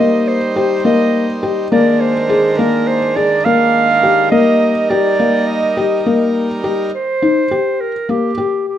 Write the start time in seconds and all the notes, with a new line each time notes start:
Already playing: G3 A#3 D#4 C5 D#5
0.28 C5
0.56 G4 C5
0.85 A#3 D#5
1.43 G4
1.71 D#3 G#3 A#3 D4 A#4 D5
2.01 C5
2.29 G#4
2.58 A#3 A#4
2.87 C5
3.16 G#4 D5
3.45 A#3 F5
4.03 G4
4.31 G3 A#3 D#4 A#4 D#5
4.89 G4 D5
5.19 A#3
5.47 D#5
5.77 G4
6.06 A#3
6.64 G4
6.94 C5
7.22 D#4
7.51 G4
7.81 A#4
8.09 A#3 G4
8.38 G4
8.68 G4